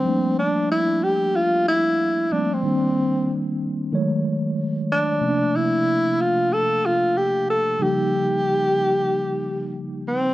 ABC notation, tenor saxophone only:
X:1
M:4/4
L:1/16
Q:"Swing 16ths" 1/4=93
K:Gdor
V:1 name="Tenor saxophone"
C2 D2 E2 G2 F2 E4 D C- | C4- C z8 z D2- | D2 E4 F2 A2 F2 G2 A2 | G12 z2 C2 |]